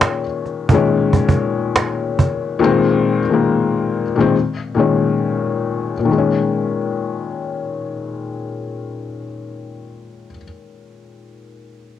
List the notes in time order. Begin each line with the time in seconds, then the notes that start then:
Already playing: A#2 D#3 G#3 C#4
0.01 cajon slap
0.46 cajon slap
0.69 A#2 D#3, cajon bass
0.73 G#3 C#4
0.85 cajon slap
1.13 cajon bass
1.29 cajon bass
1.76 cajon slap
2.19 cajon bass
2.59 A#2 D#3 G#3
2.64 C4
3.29 A#2 D#3 G#3
3.34 A#3
4.16 A#2 D#3 G#3
4.21 C4
4.75 A#2 D#3 G#3
4.80 C#4
5.99 A#2
6.05 D#3
6.11 G#3
6.18 C#4